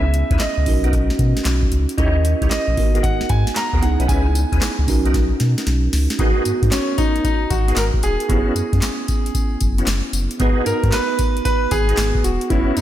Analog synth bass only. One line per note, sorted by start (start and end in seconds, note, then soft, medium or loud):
0.00 0.24 C#2 loud
0.31 0.38 D#2 medium
0.58 0.65 C#2 loud
0.66 1.10 B1 medium
1.19 1.33 B2 loud
1.45 1.67 B1 medium
1.72 1.86 C#2 medium
1.98 2.34 D#2 loud
2.42 2.49 C#2 loud
2.68 2.75 A#1 loud
2.78 3.21 G#1 loud
3.30 3.44 G#2 loud
3.73 3.81 D#2 medium
3.83 3.97 C#2 medium
4.00 4.07 B1 loud
4.09 4.45 C#2 loud
4.52 4.60 D#2 medium
4.79 4.86 C#2 loud
4.88 5.32 B1 loud
5.41 5.55 B2 medium
5.67 5.89 B1 loud
5.93 6.08 C#2 loud
6.19 6.33 G#1 loud
6.46 6.52 G#2 medium
6.62 6.70 G#2 loud
7.51 7.72 G#1 medium
7.76 7.91 G#1 loud
8.02 8.17 E1 medium
8.29 8.44 F#1 loud
8.55 8.62 F#2 soft
8.73 8.80 F#2 medium
9.61 9.83 F#1 medium
9.87 10.02 F#1 loud
10.13 10.28 F#1 medium
10.40 10.54 G#1 loud
10.66 10.73 G#2 medium
10.84 10.91 G#2 loud
11.71 11.93 G#1 medium
11.98 12.12 G#1 loud
12.24 12.38 E1 loud
12.50 12.65 F#1 loud
12.77 12.81 F#2 medium